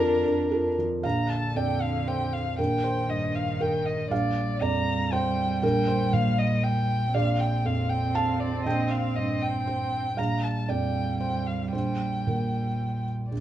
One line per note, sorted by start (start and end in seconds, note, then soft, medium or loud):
0.00 1.00 F2 medium
0.00 0.14 F3 soft
0.00 0.77 D4 medium
0.00 0.22 F4 soft
0.00 0.22 A4 soft
0.00 0.77 A#4 medium
0.25 0.67 D4 soft
0.51 0.75 F4 soft
0.51 0.75 A4 soft
0.51 1.00 A#4 medium
0.78 1.04 F3 soft
1.03 2.55 A#1 soft
1.03 2.54 D3 medium
1.03 1.52 F5 medium
1.03 1.31 A#5 medium
1.29 1.58 A5 soft
1.56 2.58 F2 soft
1.56 2.04 D5 medium
1.56 1.83 G5 medium
1.81 2.09 F5 soft
2.08 2.55 C5 medium
2.08 2.34 G5 soft
2.33 2.58 F5 soft
2.58 4.07 A#1 soft
2.58 4.07 D#3 medium
2.58 2.82 A#4 medium
2.58 3.11 G5 medium
2.84 3.56 C5 medium
3.09 4.11 G2 soft
3.09 3.37 D#5 medium
3.35 3.63 F5 soft
3.60 4.08 A#4 medium
3.60 3.87 G5 soft
3.86 4.10 D#5 soft
4.10 5.59 A#1 soft
4.10 7.10 G3 medium
4.10 4.63 D5 medium
4.10 4.58 F5 medium
4.61 5.63 F2 soft
4.61 5.09 D5 medium
4.61 5.14 A#5 medium
5.12 5.59 C5 medium
5.12 5.62 G5 medium
5.63 7.10 A#1 medium
5.63 5.87 A#4 medium
5.63 6.15 G5 medium
5.88 6.60 C5 medium
6.13 7.14 A#2 soft
6.13 6.40 F5 medium
6.38 6.66 D#5 medium
6.64 7.16 G5 medium
7.14 8.61 A#1 medium
7.14 10.13 C4 medium
7.14 8.11 D5 medium
7.14 7.41 F5 medium
7.39 7.67 G5 medium
7.65 8.66 F2 soft
7.65 7.91 F5 medium
7.89 8.17 G5 medium
8.15 8.41 F5 medium
8.15 8.62 A5 medium
8.40 8.64 D5 medium
8.65 10.14 A#1 soft
8.65 8.92 D#5 medium
8.65 9.64 G5 medium
8.91 9.17 F5 soft
9.16 10.18 G2 soft
9.16 9.43 D#5 medium
9.42 10.20 G5 soft
9.67 10.14 C5 medium
10.17 11.69 A#1 soft
10.17 13.08 G3 medium
10.17 10.65 F5 medium
10.17 10.45 A#5 soft
10.43 10.70 A5 soft
10.69 11.73 F2 soft
10.69 11.16 D5 medium
10.69 11.19 G5 soft
11.20 11.69 C5 soft
11.20 11.48 G5 soft
11.46 11.73 F5 soft
11.73 13.28 A#1 soft
11.73 12.22 C5 soft
11.73 13.04 G5 soft
12.27 13.32 A#2 soft
12.27 13.02 A#4 soft
13.32 13.40 A#1 soft
13.32 13.40 C4 soft
13.32 13.40 D5 soft